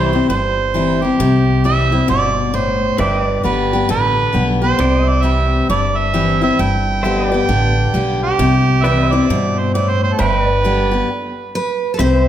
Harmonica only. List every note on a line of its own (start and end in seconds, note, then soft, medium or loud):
0.00 0.26 C5 medium
0.30 1.05 C5 loud
1.03 1.65 G4 medium
1.65 2.07 E5 loud
2.10 2.57 D5 loud
2.55 2.99 C5 medium
3.00 3.42 D5 medium
3.45 3.86 B4 medium
3.91 4.46 B4 loud
4.63 5.10 C5 loud
5.09 5.25 D5 loud
5.24 5.69 E5 loud
5.70 5.99 D5 loud
5.98 6.43 E5 loud
6.43 6.62 E5 loud
6.61 7.33 G5 loud
7.33 8.19 G5 loud
8.23 8.85 G4 loud
8.84 9.14 E5 loud
9.12 9.60 D5 medium
9.59 9.74 C5 medium
9.74 9.91 D5 medium
9.90 10.03 C5 medium
10.04 10.15 C5 medium
10.13 10.22 A4 medium
10.20 11.55 B4 loud